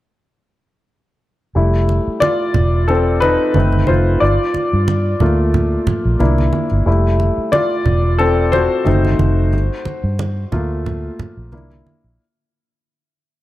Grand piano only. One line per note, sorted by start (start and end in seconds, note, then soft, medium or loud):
1.55 2.51 G3 soft
1.55 2.51 A3 soft
1.55 2.52 E4 soft
2.20 2.85 F4 medium
2.20 2.90 D5 medium
2.88 3.20 C4 medium
2.88 3.19 A4 medium
3.20 3.54 D#4 medium
3.20 3.90 B4 medium
3.55 4.18 A3 soft
3.55 4.18 C4 soft
3.55 4.19 D#4 medium
3.87 4.19 F4 medium
3.87 4.22 C5 medium
4.20 5.20 F4 medium
4.20 6.16 D5 medium
5.20 6.16 A3 soft
5.20 6.17 A#3 soft
5.20 6.17 F4 medium
6.19 6.65 A#3 soft
6.19 6.65 D4 soft
6.19 6.66 E4 medium
6.86 8.82 G3 soft
6.86 8.82 A3 soft
6.86 8.82 E4 soft
7.52 8.16 F4 medium
7.52 8.21 D5 medium
8.18 8.51 C4 medium
8.18 8.53 A4 medium
8.52 11.48 F#4 medium
8.52 11.48 C5 medium
8.85 9.49 A3 soft
8.85 9.49 C4 soft
8.85 9.50 D#4 medium
10.52 11.48 A3 soft
10.52 11.48 A#3 soft
10.52 11.49 F4 medium
11.52 12.16 A#3 soft
11.52 12.16 D4 soft
11.52 12.16 E4 medium